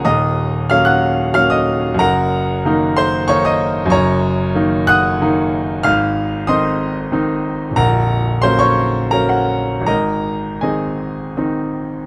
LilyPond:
<<
  \new Staff \with { instrumentName = "Grand piano" } { \time 3/4 \key ees \dorian \tempo 4 = 92 <ees'' bes'' ees'''>4 <f'' f'''>16 <ges'' ges'''>8. <f'' f'''>16 <ees'' ees'''>8. | <bes' ges'' bes''>4. <c'' c'''>8 <des'' des'''>16 <ees'' ees'''>8. | \key aes \mixolydian <des'' bes'' des'''>4. <ges'' ees''' ges'''>4. | <f'' f'''>4 <ees'' c''' ees'''>4. r8 |
<bes' ges'' bes''>4 <c'' c'''>16 <des'' des'''>8. <bes' bes''>16 <ges' ges''>8. | <bes' ees'' bes''>4 <aes' ees'' aes''>4 r4 | }
  \new Staff \with { instrumentName = "Grand piano" } { \clef bass \time 3/4 \key ees \dorian <ees,, ees,>4 <ges bes des'>4 <ges bes des'>4 | <ges,, ges,>4 <ees bes ees'>4 <ees bes ees'>4 | \key aes \mixolydian <ges,, ges,>4 <ees bes ees'>4 <ees bes ees'>4 | <aes,, aes,>4 <ees c' ees'>4 <ees c' ees'>4 |
<bes,,, bes,,>4 <ges bes des'>4 <ges bes des'>4 | <aes,, aes,>4 <ees c' ees'>4 <ees c' ees'>4 | }
>>